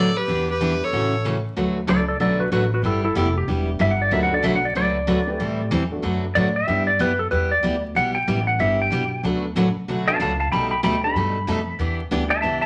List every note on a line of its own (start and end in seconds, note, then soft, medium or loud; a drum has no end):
0.00 0.15 A1 medium
0.00 0.20 A4 medium
0.00 0.18 D5 medium
0.17 0.49 G4 medium
0.17 0.49 B4 medium
0.28 0.80 E2 loud
0.28 0.49 E3 medium
0.28 0.49 B3 medium
0.28 0.50 D4 medium
0.28 0.50 G4 medium
0.50 0.86 G4 medium
0.50 0.85 B4 medium
0.60 0.72 E3 medium
0.60 0.78 G3 medium
0.60 0.78 B3 medium
0.60 0.72 B3 medium
0.60 0.78 D4 medium
0.60 0.72 D4 medium
0.60 0.78 E4 medium
0.60 0.72 G4 medium
0.84 1.27 A4 medium
0.84 1.26 C#5 medium
0.93 1.44 A1 medium
0.93 1.13 C#3 soft
0.93 1.13 E3 medium
0.93 1.14 A3 medium
0.93 1.14 C#4 medium
0.93 1.14 F#4 soft
1.25 1.36 C#3 medium
1.25 1.36 E3 medium
1.25 1.36 A3 medium
1.25 1.36 C#4 medium
1.25 1.36 F#4 medium
1.57 1.87 D2 medium
1.57 1.77 D3 medium
1.57 1.77 F#3 medium
1.57 1.77 A3 medium
1.57 1.77 D4 medium
1.57 1.77 F#4 medium
1.57 1.77 B4 medium
1.87 2.19 C#2 medium
1.87 1.99 D3 medium
1.87 1.99 F#3 medium
1.87 1.99 A3 medium
1.87 1.99 D4 medium
1.87 2.00 F#4 medium
1.87 2.07 A4 medium
1.87 2.00 B4 medium
1.87 2.07 D5 medium
2.08 2.19 A4 medium
2.08 2.20 D5 medium
2.20 2.51 B1 medium
2.20 2.41 D3 medium
2.20 2.68 F#3 medium
2.20 2.41 F#3 medium
2.20 2.41 A3 medium
2.20 2.68 A3 medium
2.20 2.68 B3 medium
2.20 2.68 D4 soft
2.20 2.41 D4 medium
2.20 2.41 F#4 medium
2.20 2.68 F#4 medium
2.20 2.39 A4 medium
2.20 2.41 B4 medium
2.20 2.40 D5 medium
2.40 2.51 F#4 medium
2.40 2.52 B4 medium
2.52 2.82 A1 medium
2.52 2.63 D3 medium
2.52 2.63 F#3 medium
2.52 2.63 A3 medium
2.52 2.64 D4 medium
2.52 2.64 F#4 medium
2.52 2.71 F#4 medium
2.52 2.64 B4 medium
2.52 2.72 B4 medium
2.74 2.85 F#4 medium
2.74 2.85 B4 medium
2.83 3.15 G1 medium
2.83 3.05 G3 medium
2.83 3.05 B3 medium
2.83 3.05 E4 medium
2.83 3.03 E4 medium
2.83 3.05 G4 medium
2.83 3.04 A4 medium
3.04 3.16 E4 medium
3.04 3.17 A4 medium
3.15 3.47 F1 medium
3.15 3.27 G3 medium
3.15 3.27 B3 medium
3.15 3.27 E4 medium
3.15 3.36 E4 medium
3.15 3.28 G4 medium
3.15 3.36 A4 medium
3.38 3.49 G4 medium
3.47 3.79 E1 medium
3.47 3.95 G3 medium
3.47 3.69 G3 medium
3.47 3.95 B3 medium
3.47 3.69 B3 medium
3.47 3.95 D4 medium
3.47 3.96 E4 medium
3.47 3.69 E4 medium
3.47 3.96 G4 medium
3.47 3.69 G4 medium
3.79 4.11 G1 loud
3.79 3.91 G3 medium
3.79 3.91 B3 medium
3.79 3.91 E4 medium
3.79 3.91 G4 medium
3.79 3.91 E5 medium
3.91 4.01 F#5 medium
4.02 4.12 D5 medium
4.11 4.43 D2 medium
4.11 4.32 D3 medium
4.11 4.32 F#3 medium
4.11 4.32 A3 medium
4.11 4.30 A#3 medium
4.11 4.30 C4 medium
4.11 4.32 D4 medium
4.11 4.30 D#4 medium
4.11 4.32 F#4 medium
4.11 4.30 G4 medium
4.11 4.30 A#4 medium
4.11 4.33 B4 medium
4.11 4.22 E5 loud
4.23 4.33 F#5 medium
4.32 4.60 A3 medium
4.32 4.60 B3 medium
4.32 4.60 D4 medium
4.32 4.60 F#4 medium
4.32 4.60 A4 medium
4.32 4.44 D5 loud
4.43 4.75 B1 loud
4.43 4.54 D3 medium
4.43 4.55 F#3 medium
4.43 4.55 A3 medium
4.43 4.55 D4 medium
4.43 4.55 F#4 medium
4.43 4.55 B4 medium
4.43 4.55 E5 medium
4.55 4.66 F#5 medium
4.65 4.75 D5 medium
4.75 5.07 C#2 medium
4.75 4.96 D3 medium
4.75 4.96 F#3 medium
4.75 4.96 A3 medium
4.75 4.96 D4 medium
4.75 4.96 F#4 medium
4.75 4.96 B4 medium
4.75 5.69 D5 loud
5.07 5.39 D2 medium
5.07 5.19 D3 medium
5.07 5.19 F#3 medium
5.07 5.19 A3 medium
5.07 5.19 D4 medium
5.07 5.19 F#4 medium
5.07 5.19 B4 medium
5.27 5.69 A3 medium
5.27 5.69 C4 medium
5.27 5.69 E4 medium
5.27 5.69 G4 medium
5.27 5.70 B4 medium
5.40 5.71 A2 medium
5.40 5.60 E3 medium
5.40 5.60 G3 medium
5.40 5.60 C4 medium
5.40 5.61 E4 medium
5.40 5.61 A4 medium
5.71 6.03 E2 loud
5.71 5.82 E3 medium
5.71 5.82 G3 medium
5.71 5.83 C4 medium
5.71 5.83 E4 medium
5.71 5.83 A4 medium
5.91 6.03 A3 medium
5.91 6.03 B3 medium
5.91 6.03 D4 medium
5.91 6.03 F#4 medium
5.91 6.03 A4 medium
6.02 6.35 F#2 medium
6.02 6.23 D3 soft
6.02 6.24 F#3 soft
6.02 6.24 A3 medium
6.02 6.24 D4 medium
6.02 6.24 F#4 medium
6.02 6.24 B4 medium
6.35 6.67 A2 medium
6.35 6.47 D3 medium
6.35 6.47 F#3 medium
6.35 6.47 A3 medium
6.35 6.47 D4 medium
6.35 6.47 F#4 medium
6.35 6.47 B4 medium
6.35 6.55 D5 medium
6.56 6.87 E5 medium
6.67 6.99 G2 medium
6.67 6.85 G3 medium
6.67 6.88 G3 medium
6.67 6.85 B3 medium
6.67 6.88 B3 medium
6.67 6.85 D4 medium
6.67 6.85 E4 medium
6.67 6.88 E4 medium
6.67 6.85 G4 medium
6.67 6.89 G4 medium
6.87 6.99 D5 medium
6.99 7.31 F#2 medium
6.99 7.11 G3 medium
6.99 7.11 B3 medium
6.99 7.11 E4 medium
6.99 7.11 G4 medium
6.99 7.19 B4 medium
7.19 7.31 A4 medium
7.31 7.62 E2 medium
7.31 7.52 G3 soft
7.31 7.52 B3 medium
7.31 7.52 E4 medium
7.31 7.52 G4 medium
7.31 7.50 B4 medium
7.51 7.82 D5 loud
7.63 7.94 D2 medium
7.63 7.74 G3 medium
7.63 7.75 B3 medium
7.63 7.75 E4 medium
7.63 7.75 G4 medium
7.95 8.26 B1 medium
7.95 8.16 G3 medium
7.95 8.16 B3 medium
7.95 8.16 E4 medium
7.95 8.17 G4 medium
7.95 8.14 F#5 medium
8.15 8.46 G5 loud
8.28 8.58 A1 loud
8.28 8.39 G3 medium
8.28 8.39 B3 medium
8.28 8.39 E4 medium
8.28 8.39 G4 medium
8.47 8.59 F#5 medium
8.59 8.90 G1 medium
8.59 8.80 G3 soft
8.59 9.07 G3 medium
8.59 9.07 B3 medium
8.59 8.80 B3 medium
8.59 9.07 D4 medium
8.59 9.07 E4 soft
8.59 8.80 E4 medium
8.59 9.08 G4 medium
8.59 8.80 G4 medium
8.59 8.79 E5 loud
8.82 9.23 G5 loud
8.90 9.22 B1 loud
8.90 9.03 G3 medium
8.90 9.03 B3 medium
8.90 9.03 E4 medium
8.90 9.03 G4 medium
9.23 9.54 D2 medium
9.23 9.44 D3 medium
9.23 9.44 F#3 medium
9.23 9.44 A3 medium
9.23 9.42 A3 medium
9.23 9.42 B3 medium
9.23 9.44 D4 medium
9.23 9.42 D4 medium
9.23 9.42 F#4 medium
9.23 9.44 F#4 medium
9.23 9.42 A4 medium
9.23 9.45 B4 medium
9.55 9.74 A1 loud
9.55 9.67 D3 medium
9.55 9.67 F#3 medium
9.55 9.67 A3 medium
9.55 9.67 D4 medium
9.55 9.67 F#4 medium
9.55 9.67 B4 loud
9.75 muted upright bass stroke soft
9.88 10.19 B1 medium
9.88 10.08 D3 medium
9.88 10.08 F#3 medium
9.88 10.08 A3 medium
9.88 10.09 D4 medium
9.88 10.09 F#4 medium
9.88 10.09 B4 medium
10.07 10.18 A3 medium
10.07 10.19 B3 medium
10.07 10.19 D4 medium
10.07 10.19 F#4 medium
10.07 10.19 B4 medium
10.07 10.20 F5 medium
10.07 10.19 A5 loud
10.20 10.51 C#2 loud
10.20 10.31 D3 medium
10.20 10.31 F#3 medium
10.20 10.31 A3 medium
10.20 10.31 D4 medium
10.20 10.31 F#4 medium
10.20 10.31 B4 medium
10.20 10.39 F5 medium
10.20 10.39 A5 medium
10.40 10.51 F5 medium
10.40 10.52 A5 medium
10.52 10.83 B1 medium
10.52 10.72 B2 medium
10.52 10.72 G3 medium
10.52 10.73 A3 medium
10.52 10.73 D#4 medium
10.52 10.73 A4 medium
10.52 10.70 G5 medium
10.52 10.70 B5 medium
10.71 10.83 G5 medium
10.71 10.83 B5 medium
10.83 11.14 D2 medium
10.83 10.94 B2 medium
10.83 10.94 G3 medium
10.83 10.95 A3 medium
10.83 10.95 D#4 medium
10.83 10.95 A4 medium
10.83 11.02 G5 medium
10.83 11.03 B5 medium
11.03 11.14 A3 medium
11.03 11.14 B3 medium
11.03 11.14 D4 medium
11.03 11.14 D#4 medium
11.03 11.15 G4 medium
11.03 11.97 B5 medium
11.15 11.46 G2 medium
11.15 11.36 B2 medium
11.15 11.36 G3 medium
11.15 11.36 A3 medium
11.15 11.37 D#4 medium
11.15 11.37 A4 medium
11.47 11.78 F2 medium
11.47 11.58 B2 medium
11.47 11.59 G3 medium
11.47 11.59 A3 medium
11.47 11.59 D#4 medium
11.47 11.59 A4 medium
11.79 12.10 E2 medium
11.79 12.00 E3 medium
11.79 12.00 B3 medium
11.79 12.00 D4 medium
11.79 12.00 G4 medium
12.11 12.42 D2 medium
12.11 12.22 E3 medium
12.11 12.29 G3 medium
12.11 12.29 B3 medium
12.11 12.22 B3 medium
12.11 12.29 D4 medium
12.11 12.23 D4 medium
12.11 12.29 E4 medium
12.11 12.29 G4 medium
12.11 12.23 G4 medium
12.30 12.40 E5 medium
12.30 12.41 A5 medium
12.41 12.62 C#2 medium
12.41 12.63 E3 soft
12.41 12.64 B3 medium
12.41 12.64 D4 medium
12.41 12.64 G4 medium
12.41 12.60 E5 medium
12.41 12.61 A5 medium
12.61 12.66 E5 medium
12.61 12.66 A5 medium
12.61 muted upright bass stroke soft